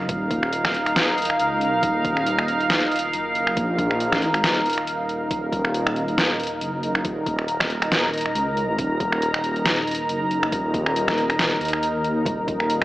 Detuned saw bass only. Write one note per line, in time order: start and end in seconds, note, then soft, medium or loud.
0.09 1.38 D#1 medium
1.40 1.81 C#2 loud
1.83 3.12 D#1 loud
3.13 3.55 F#1 loud
3.57 4.17 A#1 loud
4.17 4.42 A1 loud
4.44 5.29 D#1 medium
5.31 6.60 D#1 loud
6.61 7.03 F#1 loud
7.05 8.34 D#1 loud
8.35 8.77 C#2 loud
8.79 10.07 D#1 loud
10.09 10.51 F#1 loud
10.52 10.94 D#1 loud
10.96 11.59 D#1 loud
11.61 12.25 D#2 loud
12.26 12.85 D#1 medium